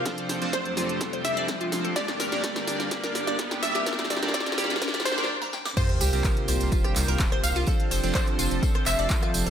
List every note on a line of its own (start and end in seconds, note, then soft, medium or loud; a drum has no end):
0.00 5.29 D4 medium
0.00 1.92 D5 medium
0.00 5.29 D5 medium
0.00 0.44 F5 medium
0.00 riser medium
0.06 1.94 F2 medium
0.06 1.94 C3 medium
0.06 0.39 F3 medium
0.06 1.94 A3 medium
0.06 0.39 C4 medium
0.06 0.39 D4 medium
0.06 0.39 F4 medium
0.06 5.25 G4 medium
0.06 0.39 A4 medium
0.06 0.12 A4 medium
0.06 0.39 C5 medium
0.06 kick loud
0.06 snare medium
0.06 closed hi-hat medium
0.18 closed hi-hat soft
0.29 0.36 C5 medium
0.29 snare medium
0.29 open hi-hat loud
0.42 1.93 F3 loud
0.42 1.93 C4 medium
0.42 1.93 D4 medium
0.42 1.93 F4 medium
0.42 1.93 A4 medium
0.42 1.93 C5 loud
0.42 closed hi-hat soft
0.53 1.15 C5 loud
0.53 0.57 D5 medium
0.53 kick loud
0.53 snare medium
0.53 closed hi-hat medium
0.65 closed hi-hat soft
0.77 0.84 F4 loud
0.77 snare medium
0.77 open hi-hat loud
0.89 closed hi-hat soft
1.01 1.08 A4 medium
1.01 kick loud
1.01 snare medium
1.01 closed hi-hat medium
1.13 1.17 C5 medium
1.13 closed hi-hat soft
1.25 1.87 E5 medium
1.25 snare medium
1.25 open hi-hat loud
1.37 1.43 D5 loud
1.37 closed hi-hat soft
1.48 kick loud
1.48 snare medium
1.48 closed hi-hat medium
1.61 1.67 F4 loud
1.61 closed hi-hat soft
1.72 snare medium
1.72 open hi-hat loud
1.84 1.91 A4 medium
1.84 closed hi-hat soft
1.96 2.29 G2 medium
1.96 5.26 G2 medium
1.96 5.26 D3 medium
1.96 2.29 A#3 medium
1.96 5.26 A#3 medium
1.96 2.29 D4 medium
1.96 2.00 G4 loud
1.96 2.29 G4 medium
1.96 2.29 A#4 medium
1.96 2.82 D5 loud
1.96 5.26 D5 medium
1.96 2.29 D5 loud
1.96 kick loud
1.96 snare medium
1.96 closed hi-hat medium
2.08 snare medium
2.08 closed hi-hat soft
2.20 2.27 A#4 loud
2.20 snare medium
2.20 open hi-hat loud
2.32 3.84 G2 loud
2.32 3.84 A#3 medium
2.32 3.84 D4 medium
2.32 3.84 G4 medium
2.32 3.84 A#4 medium
2.32 3.84 D5 loud
2.32 snare medium
2.32 closed hi-hat soft
2.44 2.48 D5 medium
2.44 kick loud
2.44 snare medium
2.44 closed hi-hat loud
2.56 snare medium
2.56 closed hi-hat soft
2.67 2.74 G5 medium
2.67 snare medium
2.67 open hi-hat loud
2.80 snare medium
2.80 closed hi-hat soft
2.91 2.98 G4 medium
2.91 kick loud
2.91 snare loud
2.91 closed hi-hat medium
3.04 3.10 A#4 loud
3.04 snare medium
3.04 closed hi-hat soft
3.15 snare medium
3.15 open hi-hat loud
3.27 3.37 D5 loud
3.27 snare medium
3.27 closed hi-hat soft
3.39 kick loud
3.39 snare loud
3.39 closed hi-hat medium
3.51 3.58 G5 medium
3.51 snare medium
3.51 closed hi-hat soft
3.63 4.25 E5 loud
3.63 snare loud
3.63 open hi-hat loud
3.75 3.85 G4 loud
3.75 snare medium
3.75 closed hi-hat soft
3.86 4.20 G2 medium
3.86 4.20 A#3 medium
3.86 4.20 D4 medium
3.86 4.20 G4 medium
3.86 3.93 A#4 medium
3.86 4.20 A#4 medium
3.86 4.20 D5 loud
3.86 kick loud
3.86 snare loud
3.86 closed hi-hat loud
3.93 snare medium
3.99 snare medium
3.99 closed hi-hat soft
4.04 snare medium
4.10 4.17 D5 medium
4.10 snare loud
4.10 open hi-hat loud
4.16 snare medium
4.23 5.29 G2 loud
4.23 5.29 A#3 medium
4.23 5.29 D4 medium
4.23 5.29 G4 medium
4.23 5.29 A#4 medium
4.23 5.29 D5 loud
4.23 snare medium
4.23 closed hi-hat soft
4.28 snare medium
4.34 4.96 D5 medium
4.34 4.38 G5 medium
4.34 kick loud
4.34 snare loud
4.34 closed hi-hat loud
4.40 snare medium
4.46 snare medium
4.46 closed hi-hat soft
4.52 snare medium
4.58 4.65 G4 loud
4.58 snare loud
4.58 open hi-hat loud
4.64 snare medium
4.70 snare medium
4.70 closed hi-hat soft
4.76 snare medium
4.82 4.89 A#4 medium
4.82 kick loud
4.82 snare loud
4.82 closed hi-hat medium
4.88 snare medium
4.94 4.98 D5 medium
4.94 snare medium
4.94 closed hi-hat soft
5.00 snare loud
5.05 5.29 C5 medium
5.05 snare loud
5.05 open hi-hat loud
5.12 snare medium
5.18 5.24 A#4 medium
5.18 snare loud
5.18 closed hi-hat soft
5.24 snare medium
5.42 5.51 A#5 medium
5.42 snare medium
5.53 5.63 G5 medium
5.53 snare medium
5.65 5.75 D6 loud
5.65 snare medium
5.77 7.66 C3 medium
5.77 6.10 C3 medium
5.77 7.66 G3 medium
5.77 7.65 A#3 medium
5.77 6.10 C4 medium
5.77 7.66 D4 medium
5.77 7.66 F4 loud
5.77 5.81 F4 loud
5.77 6.10 F4 medium
5.77 6.10 G4 medium
5.77 6.10 A#4 medium
5.77 6.63 C5 loud
5.77 6.10 C5 loud
5.77 5.81 F5 medium
5.77 kick loud
5.77 closed hi-hat medium
5.77 crash loud
5.77 tambourine medium
5.77 sub drop medium
5.89 closed hi-hat soft
6.01 6.10 C2 loud
6.01 6.08 G4 loud
6.01 6.08 G5 medium
6.01 open hi-hat loud
6.01 ride medium
6.01 tambourine medium
6.13 6.22 C2 medium
6.13 7.65 C3 loud
6.13 7.65 C4 medium
6.13 7.65 F4 medium
6.13 7.65 G4 medium
6.13 7.65 A#4 medium
6.13 7.65 C5 loud
6.13 closed hi-hat soft
6.13 tambourine soft
6.24 6.29 A#4 medium
6.24 6.29 A#5 medium
6.24 kick loud
6.24 clap loud
6.24 closed hi-hat medium
6.24 tambourine soft
6.37 closed hi-hat soft
6.48 6.58 C2 medium
6.48 6.55 C5 medium
6.48 6.55 C6 medium
6.48 open hi-hat loud
6.48 ride medium
6.48 tambourine medium
6.60 6.69 C2 medium
6.60 closed hi-hat soft
6.60 tambourine soft
6.72 6.79 F4 medium
6.72 6.79 F5 medium
6.72 kick loud
6.72 closed hi-hat medium
6.72 tambourine medium
6.84 6.91 G4 loud
6.84 6.91 G5 medium
6.84 cross-stick medium
6.84 closed hi-hat soft
6.96 7.05 C2 medium
6.96 clap medium
6.96 open hi-hat loud
6.96 ride medium
6.96 tambourine loud
7.08 7.17 C2 medium
7.08 7.18 A#4 loud
7.08 7.18 A#5 medium
7.08 closed hi-hat soft
7.08 tambourine soft
7.19 kick loud
7.19 clap loud
7.19 closed hi-hat medium
7.19 tambourine soft
7.32 7.38 C5 medium
7.32 7.39 C6 medium
7.32 cross-stick medium
7.32 closed hi-hat soft
7.44 7.53 C2 medium
7.44 8.06 F5 loud
7.44 open hi-hat loud
7.44 ride medium
7.44 tambourine medium
7.56 7.65 C2 medium
7.56 7.66 F4 loud
7.56 7.66 F5 medium
7.56 closed hi-hat soft
7.56 tambourine soft
7.67 9.50 F3 medium
7.67 8.01 F3 medium
7.67 9.50 C4 medium
7.67 8.01 C4 medium
7.67 9.50 D4 medium
7.67 8.01 D4 medium
7.67 8.01 F4 medium
7.67 9.50 G4 medium
7.67 7.74 A4 medium
7.67 9.50 A4 loud
7.67 8.01 A4 medium
7.67 8.01 C5 loud
7.67 7.74 A5 medium
7.67 kick loud
7.67 closed hi-hat medium
7.67 tambourine medium
7.80 closed hi-hat soft
7.91 8.01 F1 loud
7.91 7.98 C5 medium
7.91 7.98 C6 medium
7.91 open hi-hat loud
7.91 ride medium
7.91 tambourine loud
8.03 8.12 F1 medium
8.03 9.50 F3 loud
8.03 9.50 C4 medium
8.03 9.50 D4 medium
8.03 9.50 F4 medium
8.03 9.50 A4 medium
8.03 9.50 C5 loud
8.03 closed hi-hat soft
8.03 tambourine soft
8.15 8.77 C5 loud
8.15 8.19 D5 medium
8.15 8.19 D6 medium
8.15 kick loud
8.15 clap loud
8.15 closed hi-hat medium
8.15 tambourine medium
8.27 closed hi-hat soft
8.39 8.48 F1 medium
8.39 8.46 F4 loud
8.39 8.46 F5 medium
8.39 open hi-hat loud
8.39 ride medium
8.39 tambourine medium
8.51 8.60 F1 medium
8.51 closed hi-hat soft
8.51 tambourine soft
8.63 8.70 A4 medium
8.63 8.70 A5 medium
8.63 kick loud
8.63 closed hi-hat medium
8.63 tambourine medium
8.75 8.79 C5 medium
8.75 8.79 C6 medium
8.75 cross-stick medium
8.75 closed hi-hat soft
8.86 8.96 F1 medium
8.86 9.49 E5 loud
8.86 clap medium
8.86 open hi-hat loud
8.86 ride medium
8.86 tambourine loud
8.99 9.08 F1 medium
8.99 9.05 D5 loud
8.99 9.05 D6 medium
8.99 closed hi-hat soft
8.99 tambourine soft
9.09 kick loud
9.09 clap loud
9.09 closed hi-hat medium
9.09 tambourine medium
9.23 9.29 F4 loud
9.23 9.29 F5 medium
9.23 cross-stick medium
9.23 closed hi-hat soft
9.34 9.44 F1 medium
9.34 open hi-hat loud
9.34 ride medium
9.34 tambourine loud
9.46 9.50 F1 medium
9.46 9.50 A4 medium
9.46 9.50 A5 medium
9.46 closed hi-hat soft
9.46 tambourine soft